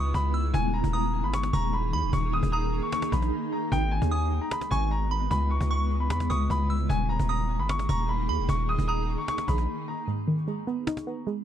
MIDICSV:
0, 0, Header, 1, 7, 480
1, 0, Start_track
1, 0, Key_signature, 5, "minor"
1, 0, Tempo, 397351
1, 652, Time_signature, 4, 2, 24, 8
1, 13821, End_track
2, 0, Start_track
2, 0, Title_t, "Synth bell"
2, 0, Program_c, 0, 98
2, 0, Note_on_c, 0, 87, 88
2, 381, Note_off_c, 0, 87, 0
2, 410, Note_on_c, 0, 88, 79
2, 639, Note_off_c, 0, 88, 0
2, 1127, Note_on_c, 0, 87, 86
2, 1806, Note_off_c, 0, 87, 0
2, 1853, Note_on_c, 0, 85, 87
2, 2304, Note_off_c, 0, 85, 0
2, 2336, Note_on_c, 0, 83, 94
2, 2562, Note_off_c, 0, 83, 0
2, 3058, Note_on_c, 0, 82, 82
2, 4447, Note_off_c, 0, 82, 0
2, 4970, Note_on_c, 0, 87, 92
2, 5648, Note_off_c, 0, 87, 0
2, 5695, Note_on_c, 0, 85, 88
2, 6145, Note_off_c, 0, 85, 0
2, 6174, Note_on_c, 0, 83, 83
2, 6401, Note_off_c, 0, 83, 0
2, 6894, Note_on_c, 0, 85, 93
2, 7570, Note_off_c, 0, 85, 0
2, 7608, Note_on_c, 0, 87, 86
2, 8061, Note_off_c, 0, 87, 0
2, 8094, Note_on_c, 0, 88, 77
2, 8321, Note_off_c, 0, 88, 0
2, 8808, Note_on_c, 0, 87, 84
2, 9487, Note_off_c, 0, 87, 0
2, 9532, Note_on_c, 0, 85, 88
2, 9983, Note_off_c, 0, 85, 0
2, 10015, Note_on_c, 0, 83, 92
2, 10242, Note_off_c, 0, 83, 0
2, 10735, Note_on_c, 0, 82, 83
2, 12126, Note_off_c, 0, 82, 0
2, 13821, End_track
3, 0, Start_track
3, 0, Title_t, "Grand piano"
3, 0, Program_c, 1, 0
3, 0, Note_on_c, 1, 85, 78
3, 158, Note_off_c, 1, 85, 0
3, 179, Note_on_c, 1, 83, 95
3, 401, Note_off_c, 1, 83, 0
3, 648, Note_on_c, 1, 80, 108
3, 876, Note_off_c, 1, 80, 0
3, 888, Note_on_c, 1, 82, 82
3, 1115, Note_off_c, 1, 82, 0
3, 1133, Note_on_c, 1, 82, 84
3, 1471, Note_off_c, 1, 82, 0
3, 1496, Note_on_c, 1, 83, 81
3, 1607, Note_off_c, 1, 83, 0
3, 1612, Note_on_c, 1, 85, 90
3, 1838, Note_off_c, 1, 85, 0
3, 1858, Note_on_c, 1, 82, 83
3, 2081, Note_off_c, 1, 82, 0
3, 2092, Note_on_c, 1, 83, 75
3, 2318, Note_off_c, 1, 83, 0
3, 2573, Note_on_c, 1, 85, 94
3, 2798, Note_off_c, 1, 85, 0
3, 2818, Note_on_c, 1, 87, 90
3, 3028, Note_off_c, 1, 87, 0
3, 3047, Note_on_c, 1, 87, 94
3, 3388, Note_off_c, 1, 87, 0
3, 3412, Note_on_c, 1, 85, 77
3, 3513, Note_off_c, 1, 85, 0
3, 3531, Note_on_c, 1, 85, 96
3, 3757, Note_off_c, 1, 85, 0
3, 3769, Note_on_c, 1, 83, 79
3, 4222, Note_off_c, 1, 83, 0
3, 4257, Note_on_c, 1, 82, 74
3, 4480, Note_off_c, 1, 82, 0
3, 4491, Note_on_c, 1, 79, 101
3, 4717, Note_off_c, 1, 79, 0
3, 4728, Note_on_c, 1, 80, 84
3, 4955, Note_off_c, 1, 80, 0
3, 4975, Note_on_c, 1, 80, 80
3, 5312, Note_off_c, 1, 80, 0
3, 5332, Note_on_c, 1, 82, 72
3, 5445, Note_off_c, 1, 82, 0
3, 5453, Note_on_c, 1, 83, 83
3, 5678, Note_off_c, 1, 83, 0
3, 5686, Note_on_c, 1, 80, 95
3, 5914, Note_off_c, 1, 80, 0
3, 5934, Note_on_c, 1, 82, 82
3, 6159, Note_off_c, 1, 82, 0
3, 6410, Note_on_c, 1, 83, 105
3, 6637, Note_off_c, 1, 83, 0
3, 6652, Note_on_c, 1, 85, 84
3, 6875, Note_off_c, 1, 85, 0
3, 6893, Note_on_c, 1, 85, 79
3, 7231, Note_off_c, 1, 85, 0
3, 7250, Note_on_c, 1, 83, 73
3, 7359, Note_off_c, 1, 83, 0
3, 7377, Note_on_c, 1, 83, 88
3, 7600, Note_off_c, 1, 83, 0
3, 7612, Note_on_c, 1, 85, 76
3, 7838, Note_off_c, 1, 85, 0
3, 7859, Note_on_c, 1, 83, 101
3, 8082, Note_off_c, 1, 83, 0
3, 8327, Note_on_c, 1, 80, 101
3, 8555, Note_off_c, 1, 80, 0
3, 8567, Note_on_c, 1, 82, 83
3, 8794, Note_off_c, 1, 82, 0
3, 8812, Note_on_c, 1, 82, 88
3, 9151, Note_off_c, 1, 82, 0
3, 9174, Note_on_c, 1, 83, 77
3, 9286, Note_off_c, 1, 83, 0
3, 9291, Note_on_c, 1, 85, 89
3, 9517, Note_off_c, 1, 85, 0
3, 9538, Note_on_c, 1, 82, 81
3, 9761, Note_off_c, 1, 82, 0
3, 9771, Note_on_c, 1, 83, 77
3, 9997, Note_off_c, 1, 83, 0
3, 10251, Note_on_c, 1, 85, 94
3, 10477, Note_off_c, 1, 85, 0
3, 10496, Note_on_c, 1, 87, 88
3, 10705, Note_off_c, 1, 87, 0
3, 10724, Note_on_c, 1, 87, 90
3, 11066, Note_off_c, 1, 87, 0
3, 11089, Note_on_c, 1, 85, 75
3, 11191, Note_off_c, 1, 85, 0
3, 11209, Note_on_c, 1, 85, 100
3, 11436, Note_off_c, 1, 85, 0
3, 11449, Note_on_c, 1, 83, 78
3, 11902, Note_off_c, 1, 83, 0
3, 11936, Note_on_c, 1, 82, 72
3, 12160, Note_off_c, 1, 82, 0
3, 13821, End_track
4, 0, Start_track
4, 0, Title_t, "Ambient pad"
4, 0, Program_c, 2, 92
4, 0, Note_on_c, 2, 49, 81
4, 0, Note_on_c, 2, 56, 79
4, 0, Note_on_c, 2, 59, 72
4, 0, Note_on_c, 2, 64, 90
4, 614, Note_off_c, 2, 56, 0
4, 614, Note_off_c, 2, 59, 0
4, 633, Note_off_c, 2, 49, 0
4, 633, Note_off_c, 2, 64, 0
4, 652, Note_on_c, 2, 63, 72
4, 652, Note_on_c, 2, 68, 75
4, 653, Note_on_c, 2, 51, 79
4, 653, Note_on_c, 2, 58, 86
4, 4454, Note_off_c, 2, 51, 0
4, 4454, Note_off_c, 2, 58, 0
4, 4454, Note_off_c, 2, 68, 0
4, 4493, Note_on_c, 2, 56, 81
4, 4494, Note_on_c, 2, 59, 72
4, 6364, Note_off_c, 2, 63, 0
4, 6414, Note_on_c, 2, 49, 81
4, 6414, Note_on_c, 2, 64, 87
4, 8294, Note_off_c, 2, 56, 0
4, 8294, Note_off_c, 2, 59, 0
4, 8314, Note_off_c, 2, 49, 0
4, 8314, Note_off_c, 2, 64, 0
4, 8332, Note_on_c, 2, 58, 85
4, 8332, Note_on_c, 2, 63, 70
4, 8332, Note_on_c, 2, 68, 73
4, 8333, Note_on_c, 2, 51, 81
4, 12134, Note_off_c, 2, 51, 0
4, 12134, Note_off_c, 2, 58, 0
4, 12134, Note_off_c, 2, 63, 0
4, 12134, Note_off_c, 2, 68, 0
4, 13821, End_track
5, 0, Start_track
5, 0, Title_t, "Synth pluck"
5, 0, Program_c, 3, 84
5, 12173, Note_on_c, 3, 44, 91
5, 12413, Note_on_c, 3, 51, 74
5, 12653, Note_on_c, 3, 56, 85
5, 12892, Note_on_c, 3, 59, 91
5, 13131, Note_on_c, 3, 63, 85
5, 13359, Note_off_c, 3, 59, 0
5, 13373, Note_off_c, 3, 44, 0
5, 13373, Note_on_c, 3, 59, 79
5, 13597, Note_off_c, 3, 56, 0
5, 13612, Note_on_c, 3, 56, 88
5, 13613, Note_off_c, 3, 51, 0
5, 13821, Note_off_c, 3, 56, 0
5, 13821, Note_off_c, 3, 59, 0
5, 13821, Note_off_c, 3, 63, 0
5, 13821, End_track
6, 0, Start_track
6, 0, Title_t, "808-style bass"
6, 0, Program_c, 4, 38
6, 0, Note_on_c, 4, 37, 104
6, 162, Note_off_c, 4, 37, 0
6, 172, Note_on_c, 4, 37, 110
6, 633, Note_off_c, 4, 37, 0
6, 652, Note_on_c, 4, 27, 111
6, 998, Note_off_c, 4, 27, 0
6, 1012, Note_on_c, 4, 27, 106
6, 1492, Note_on_c, 4, 31, 102
6, 1510, Note_off_c, 4, 27, 0
6, 1834, Note_off_c, 4, 31, 0
6, 1852, Note_on_c, 4, 27, 104
6, 2333, Note_on_c, 4, 39, 98
6, 2351, Note_off_c, 4, 27, 0
6, 2452, Note_on_c, 4, 27, 101
6, 2470, Note_off_c, 4, 39, 0
6, 2566, Note_off_c, 4, 27, 0
6, 2572, Note_on_c, 4, 27, 113
6, 2918, Note_off_c, 4, 27, 0
6, 2932, Note_on_c, 4, 27, 105
6, 3393, Note_off_c, 4, 27, 0
6, 3772, Note_on_c, 4, 34, 107
6, 4003, Note_off_c, 4, 34, 0
6, 4493, Note_on_c, 4, 32, 112
6, 4838, Note_off_c, 4, 32, 0
6, 4853, Note_on_c, 4, 39, 102
6, 5313, Note_off_c, 4, 39, 0
6, 5692, Note_on_c, 4, 32, 108
6, 6383, Note_off_c, 4, 32, 0
6, 6412, Note_on_c, 4, 37, 116
6, 6758, Note_off_c, 4, 37, 0
6, 6771, Note_on_c, 4, 37, 110
6, 7371, Note_on_c, 4, 40, 99
6, 7389, Note_off_c, 4, 37, 0
6, 7600, Note_off_c, 4, 40, 0
6, 7612, Note_on_c, 4, 37, 104
6, 7842, Note_off_c, 4, 37, 0
6, 7852, Note_on_c, 4, 37, 105
6, 8313, Note_off_c, 4, 37, 0
6, 8331, Note_on_c, 4, 27, 116
6, 8677, Note_off_c, 4, 27, 0
6, 8691, Note_on_c, 4, 27, 111
6, 9171, Note_on_c, 4, 31, 104
6, 9190, Note_off_c, 4, 27, 0
6, 9514, Note_off_c, 4, 31, 0
6, 9532, Note_on_c, 4, 27, 105
6, 10012, Note_on_c, 4, 39, 101
6, 10030, Note_off_c, 4, 27, 0
6, 10132, Note_on_c, 4, 27, 104
6, 10150, Note_off_c, 4, 39, 0
6, 10246, Note_off_c, 4, 27, 0
6, 10252, Note_on_c, 4, 27, 111
6, 10598, Note_off_c, 4, 27, 0
6, 10612, Note_on_c, 4, 27, 100
6, 11073, Note_off_c, 4, 27, 0
6, 11451, Note_on_c, 4, 34, 107
6, 11682, Note_off_c, 4, 34, 0
6, 13821, End_track
7, 0, Start_track
7, 0, Title_t, "Cajon"
7, 172, Note_on_c, 9, 36, 104
7, 293, Note_off_c, 9, 36, 0
7, 491, Note_on_c, 9, 38, 34
7, 572, Note_off_c, 9, 38, 0
7, 572, Note_on_c, 9, 38, 42
7, 652, Note_on_c, 9, 36, 113
7, 693, Note_off_c, 9, 38, 0
7, 773, Note_off_c, 9, 36, 0
7, 892, Note_on_c, 9, 38, 31
7, 1012, Note_on_c, 9, 36, 95
7, 1013, Note_off_c, 9, 38, 0
7, 1131, Note_on_c, 9, 38, 45
7, 1132, Note_off_c, 9, 36, 0
7, 1252, Note_off_c, 9, 38, 0
7, 1372, Note_on_c, 9, 38, 44
7, 1493, Note_off_c, 9, 38, 0
7, 1613, Note_on_c, 9, 38, 120
7, 1732, Note_off_c, 9, 38, 0
7, 1732, Note_on_c, 9, 38, 99
7, 1852, Note_on_c, 9, 36, 106
7, 1853, Note_off_c, 9, 38, 0
7, 1973, Note_off_c, 9, 36, 0
7, 2094, Note_on_c, 9, 38, 50
7, 2215, Note_off_c, 9, 38, 0
7, 2333, Note_on_c, 9, 38, 42
7, 2454, Note_off_c, 9, 38, 0
7, 2572, Note_on_c, 9, 36, 112
7, 2693, Note_off_c, 9, 36, 0
7, 2813, Note_on_c, 9, 38, 31
7, 2932, Note_on_c, 9, 36, 91
7, 2934, Note_off_c, 9, 38, 0
7, 3053, Note_off_c, 9, 36, 0
7, 3132, Note_on_c, 9, 38, 34
7, 3212, Note_off_c, 9, 38, 0
7, 3212, Note_on_c, 9, 38, 23
7, 3292, Note_off_c, 9, 38, 0
7, 3292, Note_on_c, 9, 38, 39
7, 3413, Note_off_c, 9, 38, 0
7, 3533, Note_on_c, 9, 38, 115
7, 3652, Note_off_c, 9, 38, 0
7, 3652, Note_on_c, 9, 38, 100
7, 3772, Note_off_c, 9, 38, 0
7, 3772, Note_on_c, 9, 36, 106
7, 3893, Note_off_c, 9, 36, 0
7, 3894, Note_on_c, 9, 38, 67
7, 4015, Note_off_c, 9, 38, 0
7, 4493, Note_on_c, 9, 36, 109
7, 4614, Note_off_c, 9, 36, 0
7, 4734, Note_on_c, 9, 38, 29
7, 4853, Note_on_c, 9, 36, 93
7, 4854, Note_off_c, 9, 38, 0
7, 4973, Note_off_c, 9, 36, 0
7, 5213, Note_on_c, 9, 38, 42
7, 5334, Note_off_c, 9, 38, 0
7, 5453, Note_on_c, 9, 38, 120
7, 5573, Note_off_c, 9, 38, 0
7, 5573, Note_on_c, 9, 38, 102
7, 5692, Note_on_c, 9, 36, 104
7, 5693, Note_off_c, 9, 38, 0
7, 5813, Note_off_c, 9, 36, 0
7, 5933, Note_on_c, 9, 38, 48
7, 6054, Note_off_c, 9, 38, 0
7, 6172, Note_on_c, 9, 38, 40
7, 6292, Note_off_c, 9, 38, 0
7, 6292, Note_on_c, 9, 38, 23
7, 6412, Note_on_c, 9, 36, 111
7, 6413, Note_off_c, 9, 38, 0
7, 6533, Note_off_c, 9, 36, 0
7, 6772, Note_on_c, 9, 36, 98
7, 6892, Note_off_c, 9, 36, 0
7, 7133, Note_on_c, 9, 38, 40
7, 7253, Note_off_c, 9, 38, 0
7, 7372, Note_on_c, 9, 38, 119
7, 7492, Note_off_c, 9, 38, 0
7, 7492, Note_on_c, 9, 38, 102
7, 7611, Note_on_c, 9, 36, 104
7, 7613, Note_off_c, 9, 38, 0
7, 7732, Note_off_c, 9, 36, 0
7, 7852, Note_on_c, 9, 36, 101
7, 7973, Note_off_c, 9, 36, 0
7, 8171, Note_on_c, 9, 38, 33
7, 8251, Note_off_c, 9, 38, 0
7, 8251, Note_on_c, 9, 38, 41
7, 8331, Note_on_c, 9, 36, 109
7, 8372, Note_off_c, 9, 38, 0
7, 8452, Note_off_c, 9, 36, 0
7, 8571, Note_on_c, 9, 38, 30
7, 8691, Note_on_c, 9, 36, 99
7, 8692, Note_off_c, 9, 38, 0
7, 8811, Note_on_c, 9, 38, 45
7, 8812, Note_off_c, 9, 36, 0
7, 8932, Note_off_c, 9, 38, 0
7, 9053, Note_on_c, 9, 38, 45
7, 9173, Note_off_c, 9, 38, 0
7, 9293, Note_on_c, 9, 38, 119
7, 9413, Note_off_c, 9, 38, 0
7, 9413, Note_on_c, 9, 38, 99
7, 9532, Note_on_c, 9, 36, 105
7, 9534, Note_off_c, 9, 38, 0
7, 9653, Note_off_c, 9, 36, 0
7, 9773, Note_on_c, 9, 38, 50
7, 9894, Note_off_c, 9, 38, 0
7, 10133, Note_on_c, 9, 38, 24
7, 10252, Note_on_c, 9, 36, 111
7, 10254, Note_off_c, 9, 38, 0
7, 10373, Note_off_c, 9, 36, 0
7, 10493, Note_on_c, 9, 38, 28
7, 10612, Note_on_c, 9, 36, 92
7, 10613, Note_off_c, 9, 38, 0
7, 10733, Note_off_c, 9, 36, 0
7, 10892, Note_on_c, 9, 38, 23
7, 10973, Note_off_c, 9, 38, 0
7, 10973, Note_on_c, 9, 38, 40
7, 11094, Note_off_c, 9, 38, 0
7, 11213, Note_on_c, 9, 38, 116
7, 11332, Note_off_c, 9, 38, 0
7, 11332, Note_on_c, 9, 38, 103
7, 11452, Note_on_c, 9, 36, 106
7, 11453, Note_off_c, 9, 38, 0
7, 11573, Note_off_c, 9, 36, 0
7, 11573, Note_on_c, 9, 38, 69
7, 11694, Note_off_c, 9, 38, 0
7, 12172, Note_on_c, 9, 38, 49
7, 12292, Note_off_c, 9, 38, 0
7, 12412, Note_on_c, 9, 38, 29
7, 12532, Note_off_c, 9, 38, 0
7, 12532, Note_on_c, 9, 38, 30
7, 12652, Note_off_c, 9, 38, 0
7, 12652, Note_on_c, 9, 38, 44
7, 12772, Note_off_c, 9, 38, 0
7, 12893, Note_on_c, 9, 38, 43
7, 13014, Note_off_c, 9, 38, 0
7, 13134, Note_on_c, 9, 38, 113
7, 13253, Note_off_c, 9, 38, 0
7, 13253, Note_on_c, 9, 38, 98
7, 13373, Note_off_c, 9, 38, 0
7, 13375, Note_on_c, 9, 38, 39
7, 13495, Note_off_c, 9, 38, 0
7, 13614, Note_on_c, 9, 38, 47
7, 13734, Note_off_c, 9, 38, 0
7, 13821, End_track
0, 0, End_of_file